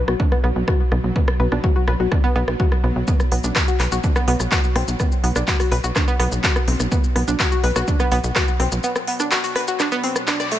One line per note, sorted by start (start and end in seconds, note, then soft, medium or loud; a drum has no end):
0.00 10.59 B2 medium
0.00 10.59 F#3 medium
0.08 0.16 B1 medium
0.08 0.19 F#4 medium
0.08 cross-stick medium
0.20 0.27 D4 medium
0.20 kick loud
0.32 0.39 B3 loud
0.32 cross-stick medium
0.44 0.52 B1 loud
0.44 0.48 B3 loud
0.56 0.64 B1 medium
0.68 0.75 F#4 medium
0.68 kick loud
0.68 cross-stick medium
0.92 1.00 B1 medium
0.92 0.99 B3 medium
0.92 cross-stick soft
1.04 1.12 B1 medium
1.16 1.23 B3 medium
1.16 kick loud
1.28 cross-stick medium
1.40 1.48 B1 medium
1.40 1.44 B4 medium
1.52 1.60 B1 medium
1.52 1.59 D4 medium
1.52 cross-stick medium
1.64 1.71 F#4 medium
1.64 kick loud
1.76 1.83 F#4 medium
1.88 1.96 B1 loud
1.88 1.95 B4 medium
1.88 cross-stick medium
2.00 2.08 B1 medium
2.00 2.11 F#4 medium
2.12 2.19 D4 medium
2.12 kick loud
2.12 cross-stick medium
2.24 2.31 B3 loud
2.36 2.44 B1 loud
2.36 2.40 B3 loud
2.48 2.56 B1 medium
2.48 cross-stick medium
2.60 2.67 F#4 medium
2.60 kick loud
2.72 cross-stick medium
2.84 2.92 B1 medium
2.84 2.91 B3 medium
2.96 3.04 B1 medium
3.08 3.15 B3 medium
3.08 kick loud
3.08 shaker medium
3.20 cross-stick medium
3.20 shaker soft
3.32 3.40 B1 medium
3.32 3.36 B3 medium
3.32 open hi-hat loud
3.44 3.52 B1 medium
3.44 3.51 D4 medium
3.44 shaker medium
3.56 3.63 F#4 medium
3.56 kick loud
3.56 cross-stick medium
3.56 clap loud
3.56 shaker soft
3.68 3.75 F#4 medium
3.68 shaker soft
3.80 3.88 B1 loud
3.80 3.87 B4 medium
3.80 cross-stick medium
3.80 clap medium
3.80 open hi-hat loud
3.92 4.00 B1 medium
3.92 4.03 F#4 medium
3.92 shaker medium
4.04 4.11 D4 medium
4.04 kick loud
4.04 shaker medium
4.16 4.23 B3 loud
4.16 cross-stick medium
4.16 shaker soft
4.28 4.36 B1 medium
4.28 4.32 B3 loud
4.28 open hi-hat loud
4.40 4.48 B1 medium
4.40 cross-stick medium
4.40 shaker medium
4.52 4.59 F#4 medium
4.52 kick loud
4.52 clap loud
4.52 shaker medium
4.64 shaker soft
4.76 4.84 B1 medium
4.76 4.83 C4 medium
4.76 cross-stick medium
4.76 open hi-hat loud
4.88 4.96 B1 medium
4.88 shaker medium
5.00 5.07 B3 medium
5.00 kick loud
5.00 cross-stick medium
5.00 shaker medium
5.12 shaker soft
5.24 5.32 B1 medium
5.24 5.28 B3 medium
5.24 open hi-hat loud
5.36 5.44 B1 medium
5.36 5.43 D4 medium
5.36 cross-stick medium
5.36 shaker medium
5.48 5.55 F#4 medium
5.48 kick loud
5.48 clap loud
5.48 shaker medium
5.60 5.67 F#4 medium
5.60 cross-stick medium
5.60 open hi-hat medium
5.60 shaker soft
5.72 5.80 B1 loud
5.72 5.79 B4 medium
5.72 open hi-hat loud
5.84 5.92 B1 medium
5.84 5.95 F#4 medium
5.84 shaker medium
5.96 6.03 D4 medium
5.96 kick loud
5.96 cross-stick medium
5.96 clap medium
5.96 shaker medium
6.08 6.15 B3 loud
6.08 shaker soft
6.20 6.28 B1 medium
6.20 6.24 B3 loud
6.20 cross-stick medium
6.20 open hi-hat loud
6.32 6.40 B1 medium
6.32 shaker medium
6.44 6.51 F#4 medium
6.44 kick loud
6.44 clap loud
6.44 shaker medium
6.56 cross-stick medium
6.56 shaker soft
6.68 6.76 B1 medium
6.68 6.75 C4 medium
6.68 open hi-hat loud
6.80 6.88 B1 medium
6.80 cross-stick medium
6.80 shaker medium
6.92 6.99 B3 medium
6.92 kick loud
6.92 shaker medium
7.04 shaker soft
7.16 7.24 B1 medium
7.16 7.20 B3 medium
7.16 cross-stick medium
7.16 open hi-hat loud
7.28 7.36 B1 medium
7.28 7.35 D4 medium
7.28 shaker medium
7.40 7.47 F#4 medium
7.40 kick loud
7.40 cross-stick soft
7.40 clap loud
7.40 shaker medium
7.52 7.59 F#4 medium
7.52 shaker soft
7.64 7.72 B1 loud
7.64 7.71 B4 medium
7.64 open hi-hat loud
7.76 7.84 B1 medium
7.76 7.87 F#4 medium
7.76 cross-stick medium
7.76 shaker medium
7.88 7.95 D4 medium
7.88 kick loud
7.88 shaker medium
8.00 8.07 B3 loud
8.00 cross-stick medium
8.00 shaker soft
8.12 8.20 B1 loud
8.12 8.16 B3 loud
8.12 open hi-hat loud
8.24 8.32 B1 medium
8.24 shaker medium
8.36 8.43 F#4 medium
8.36 kick loud
8.36 cross-stick medium
8.36 clap loud
8.36 shaker medium
8.48 shaker soft
8.60 8.68 B1 medium
8.60 8.67 C4 medium
8.60 cross-stick soft
8.60 open hi-hat medium
8.72 8.80 B1 medium
8.72 shaker medium
8.84 8.91 B3 medium
8.84 shaker medium
8.96 cross-stick medium
8.96 shaker soft
9.07 9.12 B3 medium
9.07 open hi-hat loud
9.20 9.27 D4 medium
9.20 cross-stick soft
9.20 shaker medium
9.32 9.39 F#4 medium
9.32 clap loud
9.32 shaker medium
9.44 9.51 F#4 medium
9.44 open hi-hat medium
9.44 shaker soft
9.56 9.63 B4 medium
9.56 cross-stick medium
9.56 open hi-hat loud
9.68 9.79 F#4 medium
9.68 shaker medium
9.80 9.87 D4 medium
9.80 cross-stick medium
9.80 clap medium
9.80 shaker medium
9.92 9.99 B3 loud
9.92 shaker soft
10.04 10.15 C4 medium
10.04 open hi-hat loud
10.16 cross-stick medium
10.16 shaker medium
10.28 10.39 D4 medium
10.28 clap loud
10.28 shaker medium
10.40 10.47 D5 loud
10.40 cross-stick medium
10.40 shaker soft
10.52 10.59 A3 medium
10.52 open hi-hat loud